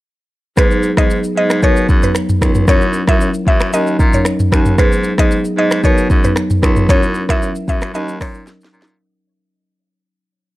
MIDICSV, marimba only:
0, 0, Header, 1, 2, 480
1, 0, Start_track
1, 0, Key_signature, 5, "minor"
1, 0, Tempo, 526316
1, 523, Time_signature, 4, 2, 24, 8
1, 9634, End_track
2, 0, Start_track
2, 0, Title_t, "Marimba"
2, 0, Program_c, 0, 12
2, 519, Note_on_c, 0, 54, 94
2, 521, Note_on_c, 0, 59, 84
2, 523, Note_on_c, 0, 63, 87
2, 525, Note_on_c, 0, 68, 104
2, 856, Note_off_c, 0, 54, 0
2, 857, Note_off_c, 0, 59, 0
2, 858, Note_off_c, 0, 63, 0
2, 859, Note_off_c, 0, 68, 0
2, 885, Note_on_c, 0, 54, 76
2, 887, Note_on_c, 0, 59, 72
2, 889, Note_on_c, 0, 63, 72
2, 1214, Note_off_c, 0, 54, 0
2, 1215, Note_off_c, 0, 59, 0
2, 1216, Note_off_c, 0, 63, 0
2, 1239, Note_on_c, 0, 54, 78
2, 1241, Note_on_c, 0, 59, 71
2, 1242, Note_on_c, 0, 63, 67
2, 1244, Note_on_c, 0, 68, 85
2, 1462, Note_off_c, 0, 54, 0
2, 1463, Note_off_c, 0, 59, 0
2, 1464, Note_off_c, 0, 63, 0
2, 1465, Note_off_c, 0, 68, 0
2, 1479, Note_on_c, 0, 54, 96
2, 1480, Note_on_c, 0, 59, 86
2, 1482, Note_on_c, 0, 63, 85
2, 1484, Note_on_c, 0, 70, 106
2, 1663, Note_off_c, 0, 54, 0
2, 1664, Note_off_c, 0, 59, 0
2, 1665, Note_off_c, 0, 63, 0
2, 1666, Note_off_c, 0, 70, 0
2, 1845, Note_on_c, 0, 54, 76
2, 1847, Note_on_c, 0, 59, 70
2, 1849, Note_on_c, 0, 63, 68
2, 1850, Note_on_c, 0, 71, 86
2, 2174, Note_off_c, 0, 54, 0
2, 2175, Note_off_c, 0, 59, 0
2, 2176, Note_off_c, 0, 63, 0
2, 2176, Note_off_c, 0, 71, 0
2, 2201, Note_on_c, 0, 54, 75
2, 2203, Note_on_c, 0, 59, 71
2, 2205, Note_on_c, 0, 63, 72
2, 2206, Note_on_c, 0, 70, 84
2, 2424, Note_off_c, 0, 54, 0
2, 2425, Note_off_c, 0, 59, 0
2, 2426, Note_off_c, 0, 63, 0
2, 2426, Note_off_c, 0, 70, 0
2, 2440, Note_on_c, 0, 54, 92
2, 2441, Note_on_c, 0, 61, 89
2, 2444, Note_on_c, 0, 64, 86
2, 2446, Note_on_c, 0, 70, 105
2, 2776, Note_off_c, 0, 54, 0
2, 2777, Note_off_c, 0, 61, 0
2, 2778, Note_off_c, 0, 64, 0
2, 2779, Note_off_c, 0, 70, 0
2, 2807, Note_on_c, 0, 54, 80
2, 2809, Note_on_c, 0, 61, 75
2, 2810, Note_on_c, 0, 64, 71
2, 2812, Note_on_c, 0, 70, 88
2, 2985, Note_off_c, 0, 54, 0
2, 2986, Note_off_c, 0, 61, 0
2, 2987, Note_off_c, 0, 64, 0
2, 2987, Note_off_c, 0, 70, 0
2, 3402, Note_on_c, 0, 54, 94
2, 3403, Note_on_c, 0, 61, 86
2, 3406, Note_on_c, 0, 63, 87
2, 3406, Note_on_c, 0, 70, 104
2, 3585, Note_off_c, 0, 54, 0
2, 3585, Note_off_c, 0, 61, 0
2, 3587, Note_off_c, 0, 63, 0
2, 3587, Note_off_c, 0, 70, 0
2, 3765, Note_on_c, 0, 54, 76
2, 3767, Note_on_c, 0, 61, 73
2, 3769, Note_on_c, 0, 63, 69
2, 3771, Note_on_c, 0, 70, 84
2, 3944, Note_off_c, 0, 54, 0
2, 3945, Note_off_c, 0, 61, 0
2, 3946, Note_off_c, 0, 63, 0
2, 3947, Note_off_c, 0, 70, 0
2, 4120, Note_on_c, 0, 54, 78
2, 4121, Note_on_c, 0, 61, 73
2, 4122, Note_on_c, 0, 63, 72
2, 4125, Note_on_c, 0, 70, 90
2, 4304, Note_off_c, 0, 54, 0
2, 4304, Note_off_c, 0, 61, 0
2, 4305, Note_off_c, 0, 63, 0
2, 4306, Note_off_c, 0, 70, 0
2, 4359, Note_on_c, 0, 54, 94
2, 4360, Note_on_c, 0, 59, 88
2, 4362, Note_on_c, 0, 63, 86
2, 4365, Note_on_c, 0, 68, 104
2, 4696, Note_off_c, 0, 54, 0
2, 4696, Note_off_c, 0, 59, 0
2, 4697, Note_off_c, 0, 63, 0
2, 4699, Note_off_c, 0, 68, 0
2, 4725, Note_on_c, 0, 54, 78
2, 4726, Note_on_c, 0, 59, 72
2, 4727, Note_on_c, 0, 63, 71
2, 4730, Note_on_c, 0, 68, 89
2, 5054, Note_off_c, 0, 54, 0
2, 5054, Note_off_c, 0, 59, 0
2, 5055, Note_off_c, 0, 63, 0
2, 5056, Note_off_c, 0, 68, 0
2, 5077, Note_on_c, 0, 54, 74
2, 5079, Note_on_c, 0, 59, 67
2, 5081, Note_on_c, 0, 63, 67
2, 5083, Note_on_c, 0, 68, 86
2, 5302, Note_off_c, 0, 54, 0
2, 5303, Note_off_c, 0, 59, 0
2, 5303, Note_off_c, 0, 63, 0
2, 5304, Note_off_c, 0, 68, 0
2, 5318, Note_on_c, 0, 54, 94
2, 5319, Note_on_c, 0, 59, 88
2, 5322, Note_on_c, 0, 63, 88
2, 5323, Note_on_c, 0, 70, 105
2, 5503, Note_off_c, 0, 54, 0
2, 5503, Note_off_c, 0, 59, 0
2, 5505, Note_off_c, 0, 63, 0
2, 5505, Note_off_c, 0, 70, 0
2, 5683, Note_on_c, 0, 54, 74
2, 5684, Note_on_c, 0, 59, 70
2, 5686, Note_on_c, 0, 63, 71
2, 5687, Note_on_c, 0, 71, 82
2, 6013, Note_off_c, 0, 54, 0
2, 6014, Note_off_c, 0, 59, 0
2, 6014, Note_off_c, 0, 63, 0
2, 6015, Note_off_c, 0, 71, 0
2, 6039, Note_on_c, 0, 54, 81
2, 6043, Note_on_c, 0, 59, 71
2, 6043, Note_on_c, 0, 63, 73
2, 6046, Note_on_c, 0, 70, 88
2, 6263, Note_off_c, 0, 54, 0
2, 6264, Note_off_c, 0, 59, 0
2, 6265, Note_off_c, 0, 63, 0
2, 6266, Note_off_c, 0, 70, 0
2, 6278, Note_on_c, 0, 54, 95
2, 6280, Note_on_c, 0, 61, 85
2, 6281, Note_on_c, 0, 64, 86
2, 6283, Note_on_c, 0, 70, 98
2, 6615, Note_off_c, 0, 54, 0
2, 6616, Note_off_c, 0, 61, 0
2, 6617, Note_off_c, 0, 64, 0
2, 6618, Note_off_c, 0, 70, 0
2, 6643, Note_on_c, 0, 54, 81
2, 6645, Note_on_c, 0, 61, 73
2, 6648, Note_on_c, 0, 64, 73
2, 6650, Note_on_c, 0, 70, 84
2, 6823, Note_off_c, 0, 54, 0
2, 6824, Note_off_c, 0, 61, 0
2, 6825, Note_off_c, 0, 64, 0
2, 6826, Note_off_c, 0, 70, 0
2, 7240, Note_on_c, 0, 54, 93
2, 7244, Note_on_c, 0, 61, 88
2, 7245, Note_on_c, 0, 63, 83
2, 7247, Note_on_c, 0, 70, 104
2, 7424, Note_off_c, 0, 54, 0
2, 7426, Note_off_c, 0, 61, 0
2, 7426, Note_off_c, 0, 63, 0
2, 7427, Note_off_c, 0, 70, 0
2, 7604, Note_on_c, 0, 54, 76
2, 7607, Note_on_c, 0, 61, 66
2, 7608, Note_on_c, 0, 63, 69
2, 7610, Note_on_c, 0, 70, 83
2, 7783, Note_off_c, 0, 54, 0
2, 7785, Note_off_c, 0, 61, 0
2, 7785, Note_off_c, 0, 63, 0
2, 7786, Note_off_c, 0, 70, 0
2, 7961, Note_on_c, 0, 54, 76
2, 7962, Note_on_c, 0, 61, 72
2, 7964, Note_on_c, 0, 63, 69
2, 7966, Note_on_c, 0, 70, 87
2, 8144, Note_off_c, 0, 54, 0
2, 8145, Note_off_c, 0, 61, 0
2, 8146, Note_off_c, 0, 63, 0
2, 8147, Note_off_c, 0, 70, 0
2, 9634, End_track
0, 0, End_of_file